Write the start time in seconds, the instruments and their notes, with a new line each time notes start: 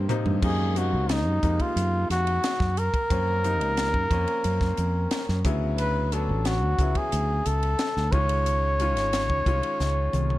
Already playing: ambient pad G#3 G4 A#4 C5
0.09 grand piano C3 F3 A#3 D#4, hi-hat pedal, mid tom
0.26 fingered electric bass G2, floor tom
0.42 fingered electric bass F#2, grand piano C3 F3 A#3 D#4, trumpet G#4, kick, crash
0.75 grand piano C3 F#3 A#3 D#4, trumpet F#4, hi-hat pedal, ride
0.93 fingered electric bass C#2
1.09 trumpet D#4, snare, hi-hat pedal, ride
1.26 fingered electric bass F#2
1.43 fingered electric bass F2, grand piano C3 G#3 A#3 D#4, kick, hi-hat pedal, ride
1.60 trumpet F4, kick, ride
1.76 fingered electric bass F#2, hi-hat pedal, ride
2.10 fingered electric bass F2, trumpet F#4, snare, hi-hat pedal, ride
2.27 ride
2.44 snare, hi-hat pedal, ride
2.60 fingered electric bass F#2, kick, snare
2.77 trumpet A#4, hi-hat pedal, ride
2.94 kick, ride
3.10 fingered electric bass F#2, grand piano F3 A#3 C4 C#4, kick, hi-hat pedal, ride
3.43 grand piano C3 F3 A#3 D#4, hi-hat pedal, ride
3.61 fingered electric bass C#2, ride
3.77 snare, hi-hat pedal, ride
3.94 fingered electric bass F#2, kick
4.10 fingered electric bass F2, grand piano F3 A#3 C4 C#4, kick, hi-hat pedal, ride
4.28 ride
4.44 fingered electric bass F#2, hi-hat pedal, ride
4.61 kick, snare
4.77 fingered electric bass F2, hi-hat pedal, ride
5.11 snare, hi-hat pedal, ride
5.29 fingered electric bass F#2, snare
5.44 fingered electric bass D2, grand piano C#3 F#3 B3 E4, kick, hi-hat pedal, ride
5.78 trumpet B4, hi-hat pedal, ride
6.12 grand piano F#3 B3 C#4 D4, trumpet A4, hi-hat pedal, ride
6.29 fingered electric bass A1
6.45 trumpet F#4, snare, hi-hat pedal, ride
6.63 fingered electric bass D2
6.79 fingered electric bass C#2, grand piano C#3 F#3 B3 E4, kick, hi-hat pedal, ride
6.95 trumpet G#4, kick, ride
7.12 fingered electric bass D2, hi-hat pedal, ride
7.46 fingered electric bass C#2, trumpet A4, hi-hat pedal, ride
7.63 ride
7.79 snare, hi-hat pedal, ride
7.97 fingered electric bass D2, snare
8.12 fingered electric bass C#2, grand piano D#3 G#3 C#4 F4, trumpet C#5, kick, hi-hat pedal, ride
8.29 ride
8.46 hi-hat pedal, ride
8.79 grand piano D#3 G#3 C#4 F4, hi-hat pedal, ride
8.97 fingered electric bass G#1, snare, ride
9.13 snare, hi-hat pedal, ride
9.30 fingered electric bass C#2, kick
9.46 fingered electric bass C2, grand piano D#3 G#3 C#4 F4, kick, hi-hat pedal, ride
9.63 ride
9.80 fingered electric bass C#2, snare, hi-hat pedal
10.13 fingered electric bass C2, hi-hat pedal, high tom
10.30 high tom